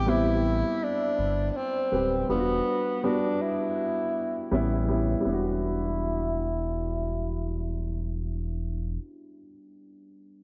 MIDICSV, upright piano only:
0, 0, Header, 1, 2, 480
1, 0, Start_track
1, 0, Key_signature, 1, "minor"
1, 0, Tempo, 740741
1, 1487, Time_signature, 4, 2, 24, 8
1, 6761, End_track
2, 0, Start_track
2, 0, Title_t, "Upright piano"
2, 0, Program_c, 0, 0
2, 0, Control_c, 0, 64, 127
2, 0, Note_on_c, 0, 55, 71
2, 0, Note_on_c, 0, 59, 69
2, 0, Note_on_c, 0, 60, 69
2, 0, Note_on_c, 0, 64, 72
2, 40, Note_off_c, 0, 55, 0
2, 40, Note_on_c, 0, 55, 76
2, 48, Note_off_c, 0, 59, 0
2, 48, Note_on_c, 0, 59, 66
2, 55, Note_off_c, 0, 60, 0
2, 55, Note_on_c, 0, 60, 70
2, 62, Note_off_c, 0, 64, 0
2, 62, Note_on_c, 0, 64, 84
2, 926, Note_off_c, 0, 55, 0
2, 930, Note_off_c, 0, 59, 0
2, 933, Note_off_c, 0, 60, 0
2, 937, Note_off_c, 0, 64, 0
2, 1242, Note_on_c, 0, 55, 64
2, 1249, Note_on_c, 0, 71, 58
2, 1255, Note_on_c, 0, 60, 59
2, 1263, Note_on_c, 0, 67, 71
2, 1465, Note_off_c, 0, 55, 0
2, 1468, Note_off_c, 0, 71, 0
2, 1472, Note_off_c, 0, 60, 0
2, 1475, Note_off_c, 0, 67, 0
2, 1483, Note_on_c, 0, 55, 67
2, 1489, Note_on_c, 0, 59, 57
2, 1496, Control_c, 0, 64, 0
2, 1496, Note_on_c, 0, 62, 60
2, 1503, Note_on_c, 0, 65, 61
2, 1546, Note_on_c, 0, 66, 73
2, 1547, Note_off_c, 0, 65, 0
2, 1626, Control_c, 0, 64, 127
2, 1926, Note_off_c, 0, 55, 0
2, 1929, Note_off_c, 0, 59, 0
2, 1933, Note_off_c, 0, 62, 0
2, 1958, Note_off_c, 0, 66, 0
2, 1966, Note_on_c, 0, 55, 74
2, 1972, Note_on_c, 0, 59, 68
2, 1979, Note_on_c, 0, 62, 62
2, 1987, Note_on_c, 0, 66, 79
2, 2849, Note_off_c, 0, 55, 0
2, 2852, Note_off_c, 0, 59, 0
2, 2856, Note_off_c, 0, 62, 0
2, 2859, Note_off_c, 0, 66, 0
2, 2925, Note_on_c, 0, 55, 84
2, 2932, Note_on_c, 0, 59, 80
2, 2934, Control_c, 0, 64, 0
2, 2938, Note_on_c, 0, 61, 81
2, 2946, Note_on_c, 0, 64, 101
2, 3038, Control_c, 0, 64, 127
2, 3146, Note_off_c, 0, 55, 0
2, 3150, Note_off_c, 0, 59, 0
2, 3153, Note_off_c, 0, 61, 0
2, 3157, Note_off_c, 0, 64, 0
2, 3164, Note_on_c, 0, 55, 80
2, 3170, Note_on_c, 0, 59, 68
2, 3178, Note_on_c, 0, 61, 66
2, 3184, Note_on_c, 0, 64, 86
2, 3364, Note_off_c, 0, 55, 0
2, 3373, Note_on_c, 0, 55, 75
2, 3389, Note_off_c, 0, 59, 0
2, 3393, Note_off_c, 0, 61, 0
2, 3396, Note_off_c, 0, 64, 0
2, 3401, Note_on_c, 0, 59, 64
2, 3414, Control_c, 0, 64, 0
2, 3426, Note_on_c, 0, 62, 63
2, 3454, Note_on_c, 0, 66, 78
2, 3525, Control_c, 0, 64, 127
2, 6084, Note_off_c, 0, 55, 0
2, 6112, Note_off_c, 0, 59, 0
2, 6137, Note_off_c, 0, 62, 0
2, 6165, Note_off_c, 0, 66, 0
2, 6761, End_track
0, 0, End_of_file